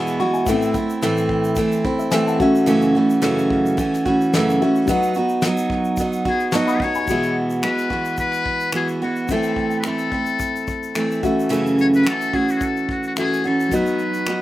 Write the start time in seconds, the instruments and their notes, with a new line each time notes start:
Already playing: steel-string acoustic guitar E2 B2 E3 G#3 B3 F#4, felt piano B3 F#4 G#4 E5 G#5 B5
0.07 shaker
0.20 steel-string acoustic guitar E3 G#3 B3 F#4, felt piano C#6
0.33 felt piano E5 G#5, shaker
0.44 steel-string acoustic guitar A2, felt piano B3 E4 A4, kick, shaker
0.48 steel-string acoustic guitar E3 A3 C4 E4, felt piano C4 E5
0.62 shaker
0.74 steel-string acoustic guitar A3 C4 E4, kick, shaker
0.90 shaker
1.02 steel-string acoustic guitar A2 E3 A3 C4 E4, snare, shaker
1.17 shaker
1.29 kick
1.44 shaker
1.55 steel-string acoustic guitar E3 A3 C4 E4, kick, shaker
1.72 shaker
1.85 steel-string acoustic guitar A3 C4 E4, felt piano A4 C5, kick
1.99 felt piano C5 E5, shaker
2.11 steel-string acoustic guitar A2 E3 A3 C4 E4, felt piano E5 G#5, snare, shaker
2.27 felt piano F#5 A5, shaker
2.37 felt piano C#4 F#4 A4, steel-string acoustic guitar C#4 F#4, kick
2.42 steel-string acoustic guitar E3 A3, felt piano E5
2.55 shaker
2.66 steel-string acoustic guitar F#2 C#3 E3 A3 C#4 F#4, shaker
2.82 shaker
2.95 steel-string acoustic guitar E3 A3 C#4 F#4
3.10 shaker
3.22 steel-string acoustic guitar F#2 C#3 E3 A3 C#4 F#4, snare, shaker
3.38 shaker
3.50 kick
3.66 shaker
3.77 steel-string acoustic guitar E3 A3 C#4 F#4, kick, shaker
3.94 snare, shaker
4.05 steel-string acoustic guitar E3 A3 C#4 F#4, kick
4.21 shaker
4.33 steel-string acoustic guitar F#2 C#3 E3 A3 C#4 F#4, snare, shaker
4.50 shaker
4.59 felt piano C#4 F#4 A4 E5, steel-string acoustic guitar C#4 F#4
4.63 steel-string acoustic guitar E3 A3
4.76 shaker
4.85 felt piano F#3 D#4 F#4 B4, steel-string acoustic guitar F#3 B3, kick, shaker
4.89 steel-string acoustic guitar D#4 F#4, felt piano F#5
5.03 shaker
5.14 steel-string acoustic guitar D#4 F#4, shaker
5.19 steel-string acoustic guitar B3
5.29 shaker
5.42 steel-string acoustic guitar F#3 B3 D#4, snare, shaker
5.47 steel-string acoustic guitar F#4
5.57 shaker
5.70 kick
5.85 shaker
5.97 steel-string acoustic guitar F#3 B3, kick, shaker
6.01 steel-string acoustic guitar D#4 F#4
6.13 shaker
6.25 steel-string acoustic guitar B3 D#4 F#4, muted trumpet G#4, kick
6.40 shaker
6.49 muted trumpet G#4, felt piano A5 C#6, snare, shaker
6.54 steel-string acoustic guitar F#3 B3 D#4 F#4, muted trumpet F#4
6.67 felt piano B5 D#6, shaker
6.80 steel-string acoustic guitar D#4 F#4, muted trumpet C#5, kick
6.84 steel-string acoustic guitar B3
6.95 felt piano G#5 B5, shaker
7.06 steel-string acoustic guitar E2, felt piano B3 F#4 G#4, kick, shaker
7.10 steel-string acoustic guitar B2 E3 G#3 B3 F#4, felt piano E5
7.23 shaker
7.50 shaker
7.63 steel-string acoustic guitar E3 G#3 B3 F#4, muted trumpet B4, finger snap, shaker
7.78 shaker
7.90 steel-string acoustic guitar E3 G#3 B3 F#4, kick
8.05 shaker
8.17 muted trumpet B4, kick, shaker
8.32 finger snap, shaker
8.46 kick
8.60 shaker
8.72 steel-string acoustic guitar E3 G#3 B3 F#4, muted trumpet G#4, finger snap, shaker
8.88 shaker
9.02 steel-string acoustic guitar E3 G#3 B3 F#4, muted trumpet F#4
9.16 shaker
9.27 steel-string acoustic guitar A2 E3, felt piano C4 E4 A4 E5, kick, shaker
9.31 steel-string acoustic guitar A3 C4 E4, muted trumpet A4
9.43 shaker
9.56 kick
9.71 shaker
9.80 muted trumpet B4, finger snap, shaker
9.84 steel-string acoustic guitar E3 A3 C4 E4, muted trumpet A4
9.98 shaker
10.12 steel-string acoustic guitar A3 C4 E4, kick
10.26 shaker
10.39 kick, shaker
10.56 shaker
10.67 kick, shaker
10.83 shaker
10.95 steel-string acoustic guitar E3 A3 C4 E4, finger snap, shaker
11.12 shaker
11.21 steel-string acoustic guitar A3 C#4 F#4, felt piano C#4 F#4 A4 E5, kick, shaker
11.25 steel-string acoustic guitar E3
11.40 shaker
11.49 steel-string acoustic guitar F#2 C#3 E3 A3 C#4 F#4, shaker
11.66 shaker
11.79 muted trumpet C#5, shaker
11.94 muted trumpet B4, shaker
12.03 steel-string acoustic guitar E3 A3 C#4 F#4, finger snap, shaker
12.08 muted trumpet A4
12.21 shaker
12.33 steel-string acoustic guitar E3 A3 C#4 F#4, muted trumpet G#4, kick
12.49 muted trumpet F#4, shaker
12.56 muted trumpet F#4 G#4
12.61 muted trumpet A4, kick, shaker
12.77 shaker
12.89 muted trumpet F#4, kick
13.03 shaker
13.07 muted trumpet F#4
13.16 steel-string acoustic guitar E3 A3 C#4 F#4, felt piano C#4 F#4 A4 E5, muted trumpet G#4, finger snap, shaker
13.33 shaker
13.44 steel-string acoustic guitar E3 A3 C#4 F#4, muted trumpet A4
13.60 shaker
13.69 felt piano F#3 B3 D#4 F#4, steel-string acoustic guitar F#3, kick, shaker
13.73 steel-string acoustic guitar B3 D#4 F#4, muted trumpet B4, felt piano D#5
13.86 shaker
13.99 shaker
14.14 shaker
14.26 steel-string acoustic guitar F#3 B3 D#4 F#4, finger snap, shaker